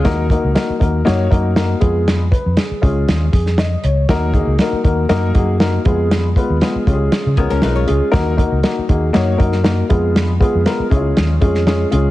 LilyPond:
<<
  \new Staff \with { instrumentName = "Hollow-body jazz guitar" } { \time 4/4 \key ees \minor \tempo 4 = 119 <aes f'>16 r2. r8. | r1 | r1 | r2 r8 <ces' aes'>16 <des' bes'>16 <ees' ces''>16 <f' des''>8. |
r1 | r1 | }
  \new Staff \with { instrumentName = "Upright piano" } { \time 4/4 \key ees \minor << { r1 | r8 ces''8 aes'4 r8 aes'8 ees''8 des''8~ | des''8 r2. r8 | r1 |
r1 | r1 | } \\ { <bes ees' ges' bes'>8 <bes ees' ges' bes'>8 <bes ees' ges' bes'>8 <bes ees' ges' bes'>8 <bes ees' ges' des''>8 <bes ees' ges' bes'>8 <bes ees' ges' bes'>8 <aes ces' f' aes'>8~ | <aes ces' f' aes'>8 r4 <aes des' f' aes'>4 r4. | <bes ees' ges' bes'>8 <bes ees' ges' aes'>8 <bes ees' ges' bes'>8 <bes ees' ges' bes'>8 <bes ees' ges' bes'>8 <bes ees' ges' aes'>8 <bes ees' ges' bes'>8 <aes ces' f' aes'>8~ | <aes ces' f' aes'>8 <aes ces' f' ces''>8 <aes ces' f' aes'>8 <aes des' f' g' aes'>4 <aes des' f' bes'>8 <aes des' f' bes'>8 <aes des' f' aes'>8 |
<bes ees' ges' bes'>8 <bes ees' ges' bes'>8 <bes ees' ges' bes'>8 <bes ees' ges' aes'>8 <bes ees' ges' des''>8 <bes ees' ges' bes'>8 <bes ees' ges' bes'>8 <aes ces' f' aes'>8~ | <aes ces' f' aes'>8 <aes ces' f' aes'>8 <aes ces' f' bes'>8 <aes des' fes' f' aes'>4 <aes des' f' aes'>8 <aes des' f' aes'>8 <aes des' f' aes'>8 | } >> }
  \new Staff \with { instrumentName = "Fingered electric bass" } { \clef bass \time 4/4 \key ees \minor ees,8. des,16 r8 ees,8 ges,8 ges,4 f,8~ | f,8. f,16 r8 des,8 ees,8 f,4 des,8 | ees,8. des,16 r8 ees,8 ges,8 ges,4 f,8~ | f,8. ees,16 r8 des,8 r16 des16 des,16 des,16 ces,8 des,16 r16 |
ees,8. des,16 r8 ees,8 ges,8 ges,4 f,8~ | f,8. f,16 r8 des,8 ees,8 f,4 des,8 | }
  \new DrumStaff \with { instrumentName = "Drums" } \drummode { \time 4/4 <hh bd sn>8 <hh bd>8 <hh sn>8 <hh bd>8 <hh sn>8 <hh bd>8 <hh sn>8 <hh bd>8 | <hh sn>8 <hh bd>8 <hh sn>8 <hh bd>8 <hh sn>8 <hh bd>16 sn16 <hh sn>8 hh8 | <hh bd sn>8 <hh bd>8 <hh sn>8 <hh bd>8 <hh sn>8 <hh bd>8 <hh sn>8 <hh bd>8 | <hh sn>8 <hh bd>8 <hh sn>8 <hh bd>8 <hh sn>8 <hh bd>16 sn16 <hh sn>8 hh8 |
<hh bd sn>8 <hh bd>8 <hh sn>8 <hh bd>8 <hh sn>8 <hh bd>16 sn16 <hh sn>8 <hh bd>8 | <hh sn>8 <hh bd>8 <hh sn>8 <hh bd>8 <hh sn>8 <hh bd>16 sn16 <hh sn>8 hh8 | }
>>